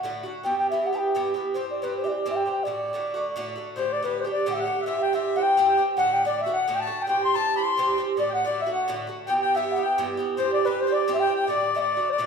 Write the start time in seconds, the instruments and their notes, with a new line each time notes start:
Already playing: flute F#5
0.03 bouzouki A2 D3 A3 F#4
0.23 bouzouki D3 A3 F#4
0.43 bouzouki G2 E3 B3 G4, flute G5
0.59 flute G5
0.70 bouzouki G2 E3 B3 G4, flute E5
0.86 flute F#5
0.93 bouzouki E3 B3 G4, flute A5
0.98 flute G5
1.15 bouzouki G2 E3 B3 G4
1.34 bouzouki E3 B3 G4
1.54 bouzouki G2 E3 C4 G4, flute C5
1.70 flute D5
1.82 bouzouki G2 E3 C4 G4, flute B4
1.97 flute C5
2.04 bouzouki E3 C4 G4, flute E5
2.08 flute D5
2.26 bouzouki G2 E3 C4 G4
2.30 flute E5
2.36 flute G5
2.46 bouzouki E3 C4 G4
2.52 flute G5
2.63 bouzouki A2 D3 A3, flute D5
2.68 bouzouki F#4
2.93 bouzouki A2 D3 A3 F#4
3.14 bouzouki D3 A3 F#4
3.36 bouzouki A2 D3 A3 F#4
3.56 bouzouki D3 A3 F#4
3.76 bouzouki A2 D3 A3 G4, accordion C5, flute C5
3.92 accordion D5, flute D5
4.03 bouzouki A2 D3 A3 G4, flute B4, accordion B4
4.19 flute C5, accordion C5
4.24 bouzouki D3 A3 G4
4.31 flute D5, accordion D5
4.46 bouzouki A2 D3 A3 G4
4.50 accordion E5, flute F#5
4.54 flute E5
4.59 accordion F#5, flute F#5
4.65 bouzouki D3 A3 G4
4.80 accordion E5, flute E5
4.86 bouzouki G2 E3 C4 G4, accordion E5, flute E5
5.02 flute G5, accordion G5
5.13 bouzouki G2 E3 C4 G4, flute E5, accordion E5
5.36 bouzouki E3 C4 G4, accordion F#5, flute F#5
5.41 accordion G5, flute G5
5.57 bouzouki G2 E3 C4 G4
5.69 accordion G5
5.77 bouzouki E3 C4 G4
5.97 bouzouki A2 D3 A3 F#4, flute F#5, accordion F#5
6.13 flute G5
6.25 bouzouki A2 D3 A3 F#4, flute D5, accordion D5
6.40 flute E5, accordion E5
6.46 bouzouki D3 A3 F#4
6.53 accordion F#5, flute F#5
6.68 bouzouki A2 D3 A3 F#4
6.75 accordion G5, flute G5
6.80 flute A5, accordion A5
6.87 bouzouki D3 A3 F#4
7.02 flute G5, accordion G5
7.07 bouzouki G2 E3 C4 G4, flute G5, accordion G5
7.23 accordion C6, flute C6
7.34 bouzouki G2 E3 C4 G4, accordion A5, flute A5
7.56 bouzouki E3 C4 G4, accordion B5, flute B5
7.62 accordion C6, flute C6
7.77 bouzouki G2 E3 C4 G4
7.98 bouzouki E3 C4 G4
8.17 bouzouki A2 D3 A3 F#4, accordion D5, flute D5
8.29 accordion G5
8.33 accordion F#5, flute F#5
8.45 bouzouki A2 D3 A3 F#4, accordion D5, flute D5
8.60 accordion E5, flute E5
8.66 bouzouki D3 A3 F#4
8.72 accordion F#5, flute F#5
8.88 bouzouki A2 D3 A3 F#4
9.07 bouzouki D3 A3 F#4
9.27 bouzouki G2 E3 B3 G4, accordion G5, flute G5
9.42 accordion G5, flute G5
9.55 bouzouki G2 E3 B3 G4, accordion E5, flute E5
9.72 flute F#5
9.76 bouzouki E3 B3 G4
9.81 accordion G5, flute G5
9.98 bouzouki G2 E3 B3 G4
10.17 bouzouki E3 B3 G4
10.37 bouzouki G2 E3 C4 G4, accordion C5, flute C5
10.52 accordion D5, flute D5
10.65 bouzouki G2 E3 C4 G4, accordion B4, flute B4
10.81 flute C5, accordion C5
10.87 bouzouki E3 C4 G4
10.92 accordion D5, flute D5
11.08 bouzouki G2 E3 C4 G4
11.14 flute E5, accordion E5
11.20 flute G5, accordion G5
11.27 bouzouki E3 C4 G4
11.36 accordion G5, flute G5
11.47 bouzouki A2 D3 A3 F#4, accordion D5, flute D5
11.75 bouzouki A2 D3 A3 F#4, flute E5
11.80 flute D5, accordion D5
11.97 bouzouki D3 A3 F#4
12.09 flute C5 D5, accordion D5
12.18 bouzouki A2 D3 A3 F#4